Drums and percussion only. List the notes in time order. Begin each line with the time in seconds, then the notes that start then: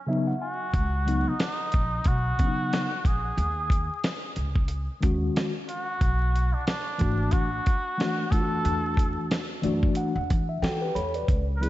0.74 kick, closed hi-hat
1.08 closed hi-hat
1.40 snare, closed hi-hat
1.72 kick, closed hi-hat
2.04 kick, closed hi-hat
2.39 kick, closed hi-hat
2.73 snare, closed hi-hat
3.05 kick, closed hi-hat
3.38 closed hi-hat
3.70 kick, closed hi-hat
4.04 snare, closed hi-hat
4.36 closed hi-hat
4.55 kick
4.68 closed hi-hat
5.03 kick, closed hi-hat
5.36 snare, closed hi-hat
5.69 closed hi-hat
6.01 kick, closed hi-hat
6.36 closed hi-hat
6.67 snare, closed hi-hat
6.99 kick, closed hi-hat
7.31 kick, closed hi-hat
7.66 kick, closed hi-hat
8.00 snare, closed hi-hat
8.32 kick, closed hi-hat
8.65 closed hi-hat
8.97 kick, closed hi-hat
9.31 snare, closed hi-hat
9.63 closed hi-hat
9.83 kick
9.95 closed hi-hat
10.30 kick, closed hi-hat
10.64 snare, closed hi-hat
10.96 closed hi-hat
11.14 closed hi-hat
11.28 kick, closed hi-hat
11.63 closed hi-hat